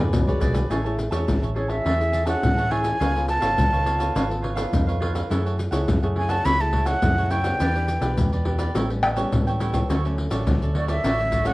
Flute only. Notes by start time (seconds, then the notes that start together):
1.57 C#5
1.70 E5
2.28 F#5
2.72 G#5
3.29 A5
6.17 G#5
6.30 A5
6.45 B5
6.61 A5
6.87 F#5
7.31 G5
10.76 D5
10.90 E5
11.47 F#5